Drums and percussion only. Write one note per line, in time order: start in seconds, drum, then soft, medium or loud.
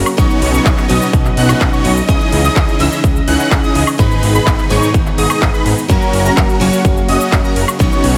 0.06 cabasa medium
0.06 high woodblock medium
0.18 kick loud
0.18 ride medium
0.18 cabasa medium
0.30 cabasa soft
0.42 open hi-hat loud
0.42 ride medium
0.54 cabasa medium
0.66 kick loud
0.66 clap loud
0.66 ride medium
0.66 cabasa medium
0.78 clap soft
0.78 cabasa soft
0.90 open hi-hat loud
0.90 ride medium
1.02 cabasa medium
1.13 kick loud
1.13 ride medium
1.13 cabasa medium
1.25 clap soft
1.25 cabasa soft
1.37 open hi-hat loud
1.37 ride medium
1.49 cabasa medium
1.49 high woodblock medium
1.61 kick loud
1.61 clap loud
1.61 ride medium
1.61 cabasa medium
1.73 cabasa soft
1.85 open hi-hat loud
1.85 ride medium
1.97 cabasa medium
2.09 kick loud
2.09 ride medium
2.09 cabasa medium
2.21 cabasa soft
2.32 open hi-hat loud
2.32 ride medium
2.45 cabasa medium
2.56 kick loud
2.56 clap loud
2.56 ride medium
2.56 cabasa medium
2.69 cabasa soft
2.80 open hi-hat medium
2.80 ride medium
2.92 cabasa medium
3.04 kick loud
3.04 ride medium
3.04 cabasa medium
3.16 cabasa soft
3.28 open hi-hat loud
3.28 ride medium
3.40 cabasa medium
3.51 kick loud
3.51 clap loud
3.51 ride medium
3.51 cabasa medium
3.64 cabasa soft
3.75 open hi-hat loud
3.75 ride medium
3.87 cabasa medium
3.87 high woodblock medium
3.99 kick loud
3.99 ride medium
3.99 cabasa medium
4.11 cabasa soft
4.23 open hi-hat loud
4.23 ride medium
4.35 cabasa medium
4.47 kick loud
4.47 clap loud
4.47 ride medium
4.47 cabasa medium
4.58 clap soft
4.58 cabasa soft
4.70 open hi-hat medium
4.70 ride medium
4.83 cabasa medium
4.94 kick loud
4.94 ride medium
4.94 cabasa medium
5.06 clap soft
5.06 cabasa soft
5.18 open hi-hat loud
5.18 ride medium
5.30 cabasa medium
5.30 high woodblock medium
5.42 kick loud
5.42 clap loud
5.42 ride medium
5.42 cabasa medium
5.54 cabasa soft
5.66 open hi-hat medium
5.66 ride medium
5.78 cabasa medium
5.90 kick loud
5.90 ride medium
5.90 cabasa medium
6.02 cabasa soft
6.13 open hi-hat loud
6.13 ride medium
6.26 cabasa medium
6.37 kick loud
6.37 clap loud
6.37 ride medium
6.37 cabasa medium
6.49 cabasa soft
6.61 open hi-hat medium
6.61 ride medium
6.73 cabasa medium
6.85 kick loud
6.85 ride medium
6.85 cabasa medium
6.97 cabasa soft
7.09 open hi-hat loud
7.09 ride medium
7.21 cabasa medium
7.32 kick loud
7.32 clap loud
7.32 ride medium
7.32 cabasa medium
7.45 cabasa soft
7.56 open hi-hat medium
7.56 ride medium
7.68 cabasa medium
7.68 high woodblock medium
7.80 kick loud
7.80 ride medium
7.80 cabasa medium
7.92 cabasa soft
8.04 open hi-hat loud
8.04 ride medium